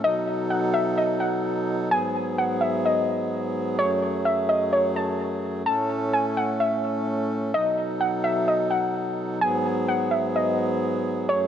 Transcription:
0, 0, Header, 1, 3, 480
1, 0, Start_track
1, 0, Tempo, 468750
1, 40, Time_signature, 4, 2, 24, 8
1, 11747, End_track
2, 0, Start_track
2, 0, Title_t, "Synth pluck"
2, 0, Program_c, 0, 84
2, 42, Note_on_c, 0, 75, 108
2, 492, Note_off_c, 0, 75, 0
2, 515, Note_on_c, 0, 78, 83
2, 745, Note_off_c, 0, 78, 0
2, 754, Note_on_c, 0, 76, 91
2, 985, Note_off_c, 0, 76, 0
2, 999, Note_on_c, 0, 75, 84
2, 1227, Note_off_c, 0, 75, 0
2, 1230, Note_on_c, 0, 78, 79
2, 1462, Note_off_c, 0, 78, 0
2, 1959, Note_on_c, 0, 80, 111
2, 2410, Note_off_c, 0, 80, 0
2, 2441, Note_on_c, 0, 78, 84
2, 2668, Note_off_c, 0, 78, 0
2, 2672, Note_on_c, 0, 76, 72
2, 2903, Note_off_c, 0, 76, 0
2, 2924, Note_on_c, 0, 75, 83
2, 3373, Note_off_c, 0, 75, 0
2, 3878, Note_on_c, 0, 73, 106
2, 4330, Note_off_c, 0, 73, 0
2, 4355, Note_on_c, 0, 76, 94
2, 4585, Note_off_c, 0, 76, 0
2, 4597, Note_on_c, 0, 75, 88
2, 4826, Note_off_c, 0, 75, 0
2, 4840, Note_on_c, 0, 73, 86
2, 5068, Note_off_c, 0, 73, 0
2, 5082, Note_on_c, 0, 81, 86
2, 5309, Note_off_c, 0, 81, 0
2, 5797, Note_on_c, 0, 81, 102
2, 6249, Note_off_c, 0, 81, 0
2, 6282, Note_on_c, 0, 80, 85
2, 6509, Note_off_c, 0, 80, 0
2, 6524, Note_on_c, 0, 78, 85
2, 6750, Note_off_c, 0, 78, 0
2, 6760, Note_on_c, 0, 76, 79
2, 7211, Note_off_c, 0, 76, 0
2, 7723, Note_on_c, 0, 75, 104
2, 8172, Note_off_c, 0, 75, 0
2, 8198, Note_on_c, 0, 78, 86
2, 8427, Note_off_c, 0, 78, 0
2, 8436, Note_on_c, 0, 76, 92
2, 8666, Note_off_c, 0, 76, 0
2, 8682, Note_on_c, 0, 75, 83
2, 8909, Note_off_c, 0, 75, 0
2, 8914, Note_on_c, 0, 78, 84
2, 9145, Note_off_c, 0, 78, 0
2, 9640, Note_on_c, 0, 80, 107
2, 10091, Note_off_c, 0, 80, 0
2, 10122, Note_on_c, 0, 78, 84
2, 10349, Note_off_c, 0, 78, 0
2, 10354, Note_on_c, 0, 76, 75
2, 10585, Note_off_c, 0, 76, 0
2, 10606, Note_on_c, 0, 75, 84
2, 11054, Note_off_c, 0, 75, 0
2, 11560, Note_on_c, 0, 73, 107
2, 11747, Note_off_c, 0, 73, 0
2, 11747, End_track
3, 0, Start_track
3, 0, Title_t, "Harmonium"
3, 0, Program_c, 1, 20
3, 40, Note_on_c, 1, 47, 74
3, 40, Note_on_c, 1, 54, 70
3, 40, Note_on_c, 1, 69, 84
3, 41, Note_on_c, 1, 63, 68
3, 1940, Note_off_c, 1, 69, 0
3, 1941, Note_off_c, 1, 47, 0
3, 1941, Note_off_c, 1, 63, 0
3, 1957, Note_on_c, 1, 44, 75
3, 1958, Note_on_c, 1, 59, 68
3, 1958, Note_on_c, 1, 68, 81
3, 3859, Note_off_c, 1, 44, 0
3, 3860, Note_off_c, 1, 59, 0
3, 3880, Note_on_c, 1, 42, 79
3, 3880, Note_on_c, 1, 57, 67
3, 5759, Note_off_c, 1, 54, 0
3, 5760, Note_off_c, 1, 68, 0
3, 5781, Note_off_c, 1, 42, 0
3, 5781, Note_off_c, 1, 57, 0
3, 5799, Note_on_c, 1, 45, 75
3, 5800, Note_on_c, 1, 57, 68
3, 5800, Note_on_c, 1, 61, 69
3, 5801, Note_on_c, 1, 69, 83
3, 7700, Note_off_c, 1, 45, 0
3, 7700, Note_off_c, 1, 57, 0
3, 7700, Note_off_c, 1, 61, 0
3, 7721, Note_on_c, 1, 47, 76
3, 7721, Note_on_c, 1, 54, 73
3, 7721, Note_on_c, 1, 63, 73
3, 9602, Note_off_c, 1, 69, 0
3, 9621, Note_off_c, 1, 47, 0
3, 9621, Note_off_c, 1, 54, 0
3, 9621, Note_off_c, 1, 63, 0
3, 9637, Note_on_c, 1, 44, 82
3, 9638, Note_on_c, 1, 54, 72
3, 9638, Note_on_c, 1, 59, 70
3, 9638, Note_on_c, 1, 68, 85
3, 11539, Note_off_c, 1, 44, 0
3, 11539, Note_off_c, 1, 59, 0
3, 11559, Note_on_c, 1, 42, 79
3, 11560, Note_on_c, 1, 57, 68
3, 11747, Note_off_c, 1, 42, 0
3, 11747, Note_off_c, 1, 54, 0
3, 11747, Note_off_c, 1, 57, 0
3, 11747, Note_off_c, 1, 68, 0
3, 11747, End_track
0, 0, End_of_file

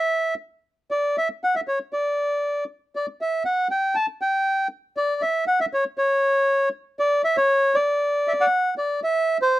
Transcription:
0, 0, Header, 1, 2, 480
1, 0, Start_track
1, 0, Key_signature, 2, "major"
1, 0, Tempo, 507614
1, 843, Time_signature, 4, 2, 24, 8
1, 9074, End_track
2, 0, Start_track
2, 0, Title_t, "Bandoneon"
2, 0, Program_c, 0, 23
2, 0, Note_on_c, 0, 76, 61
2, 326, Note_off_c, 0, 76, 0
2, 860, Note_on_c, 0, 74, 62
2, 1100, Note_off_c, 0, 74, 0
2, 1112, Note_on_c, 0, 76, 65
2, 1215, Note_off_c, 0, 76, 0
2, 1360, Note_on_c, 0, 78, 66
2, 1467, Note_off_c, 0, 78, 0
2, 1469, Note_on_c, 0, 76, 61
2, 1519, Note_off_c, 0, 76, 0
2, 1587, Note_on_c, 0, 73, 54
2, 1691, Note_off_c, 0, 73, 0
2, 1824, Note_on_c, 0, 74, 56
2, 2499, Note_off_c, 0, 74, 0
2, 2794, Note_on_c, 0, 74, 55
2, 2896, Note_off_c, 0, 74, 0
2, 3038, Note_on_c, 0, 76, 59
2, 3247, Note_off_c, 0, 76, 0
2, 3262, Note_on_c, 0, 78, 63
2, 3477, Note_off_c, 0, 78, 0
2, 3508, Note_on_c, 0, 79, 63
2, 3735, Note_on_c, 0, 81, 70
2, 3743, Note_off_c, 0, 79, 0
2, 3841, Note_off_c, 0, 81, 0
2, 3986, Note_on_c, 0, 79, 74
2, 4422, Note_off_c, 0, 79, 0
2, 4698, Note_on_c, 0, 74, 69
2, 4933, Note_on_c, 0, 76, 65
2, 4936, Note_off_c, 0, 74, 0
2, 5150, Note_off_c, 0, 76, 0
2, 5176, Note_on_c, 0, 78, 70
2, 5291, Note_off_c, 0, 78, 0
2, 5297, Note_on_c, 0, 76, 68
2, 5347, Note_off_c, 0, 76, 0
2, 5423, Note_on_c, 0, 73, 62
2, 5525, Note_off_c, 0, 73, 0
2, 5652, Note_on_c, 0, 73, 66
2, 6325, Note_off_c, 0, 73, 0
2, 6612, Note_on_c, 0, 74, 69
2, 6827, Note_off_c, 0, 74, 0
2, 6849, Note_on_c, 0, 76, 69
2, 6965, Note_off_c, 0, 76, 0
2, 6970, Note_on_c, 0, 73, 75
2, 7326, Note_on_c, 0, 74, 61
2, 7332, Note_off_c, 0, 73, 0
2, 7827, Note_on_c, 0, 76, 62
2, 7874, Note_off_c, 0, 76, 0
2, 7947, Note_on_c, 0, 78, 60
2, 8002, Note_off_c, 0, 74, 0
2, 8268, Note_off_c, 0, 78, 0
2, 8300, Note_on_c, 0, 74, 56
2, 8512, Note_off_c, 0, 74, 0
2, 8544, Note_on_c, 0, 76, 74
2, 8866, Note_off_c, 0, 76, 0
2, 8905, Note_on_c, 0, 72, 73
2, 9074, Note_off_c, 0, 72, 0
2, 9074, End_track
0, 0, End_of_file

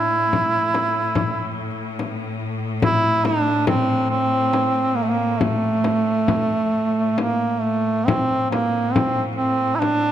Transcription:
0, 0, Header, 1, 4, 480
1, 0, Start_track
1, 0, Tempo, 836820
1, 186, Time_signature, 3, 2, 24, 8
1, 2107, Tempo, 881057
1, 4507, Tempo, 864553
1, 5639, End_track
2, 0, Start_track
2, 0, Title_t, "Duduk"
2, 0, Program_c, 0, 69
2, 0, Note_on_c, 0, 64, 76
2, 909, Note_off_c, 0, 64, 0
2, 1624, Note_on_c, 0, 64, 94
2, 1867, Note_on_c, 0, 62, 87
2, 1875, Note_off_c, 0, 64, 0
2, 2104, Note_off_c, 0, 62, 0
2, 2108, Note_on_c, 0, 60, 86
2, 2326, Note_off_c, 0, 60, 0
2, 2341, Note_on_c, 0, 60, 83
2, 2807, Note_on_c, 0, 58, 66
2, 2815, Note_off_c, 0, 60, 0
2, 2850, Note_on_c, 0, 57, 58
2, 2858, Note_off_c, 0, 58, 0
2, 2884, Note_on_c, 0, 58, 68
2, 2892, Note_off_c, 0, 57, 0
2, 3048, Note_on_c, 0, 57, 76
2, 3056, Note_off_c, 0, 58, 0
2, 4017, Note_off_c, 0, 57, 0
2, 4029, Note_on_c, 0, 58, 67
2, 4256, Note_on_c, 0, 57, 65
2, 4264, Note_off_c, 0, 58, 0
2, 4498, Note_on_c, 0, 60, 81
2, 4506, Note_off_c, 0, 57, 0
2, 4741, Note_off_c, 0, 60, 0
2, 4745, Note_on_c, 0, 58, 70
2, 4978, Note_on_c, 0, 60, 79
2, 4987, Note_off_c, 0, 58, 0
2, 5147, Note_off_c, 0, 60, 0
2, 5218, Note_on_c, 0, 60, 77
2, 5437, Note_on_c, 0, 64, 60
2, 5445, Note_off_c, 0, 60, 0
2, 5462, Note_on_c, 0, 62, 87
2, 5470, Note_off_c, 0, 64, 0
2, 5639, Note_off_c, 0, 62, 0
2, 5639, End_track
3, 0, Start_track
3, 0, Title_t, "Cello section"
3, 0, Program_c, 1, 48
3, 0, Note_on_c, 1, 45, 43
3, 4506, Note_off_c, 1, 45, 0
3, 4513, Note_on_c, 1, 45, 43
3, 5639, Note_off_c, 1, 45, 0
3, 5639, End_track
4, 0, Start_track
4, 0, Title_t, "Frame drum"
4, 188, Note_on_c, 9, 64, 50
4, 246, Note_off_c, 9, 64, 0
4, 427, Note_on_c, 9, 64, 46
4, 485, Note_off_c, 9, 64, 0
4, 662, Note_on_c, 9, 64, 60
4, 719, Note_off_c, 9, 64, 0
4, 1143, Note_on_c, 9, 64, 45
4, 1201, Note_off_c, 9, 64, 0
4, 1620, Note_on_c, 9, 64, 65
4, 1677, Note_off_c, 9, 64, 0
4, 1864, Note_on_c, 9, 64, 51
4, 1921, Note_off_c, 9, 64, 0
4, 2106, Note_on_c, 9, 64, 67
4, 2161, Note_off_c, 9, 64, 0
4, 2576, Note_on_c, 9, 64, 47
4, 2630, Note_off_c, 9, 64, 0
4, 3052, Note_on_c, 9, 64, 59
4, 3106, Note_off_c, 9, 64, 0
4, 3289, Note_on_c, 9, 64, 51
4, 3344, Note_off_c, 9, 64, 0
4, 3528, Note_on_c, 9, 64, 65
4, 3582, Note_off_c, 9, 64, 0
4, 4017, Note_on_c, 9, 64, 51
4, 4072, Note_off_c, 9, 64, 0
4, 4508, Note_on_c, 9, 64, 67
4, 4564, Note_off_c, 9, 64, 0
4, 4755, Note_on_c, 9, 64, 53
4, 4810, Note_off_c, 9, 64, 0
4, 4995, Note_on_c, 9, 64, 69
4, 5050, Note_off_c, 9, 64, 0
4, 5473, Note_on_c, 9, 64, 50
4, 5529, Note_off_c, 9, 64, 0
4, 5639, End_track
0, 0, End_of_file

